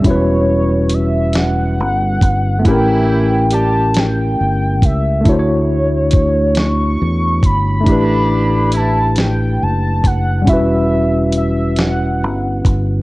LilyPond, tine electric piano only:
\new Staff \with { instrumentName = "Tine electric piano" } { \time 6/8 \key e \dorian \tempo 4. = 46 <g cis' e' fis' b'>2. | <a c' cis' e' g' bes'>2. | <a d' e' fis' c'' cis''>2. | <a d' e' g' b'>2. |
<g cis' e' fis' b'>2. | }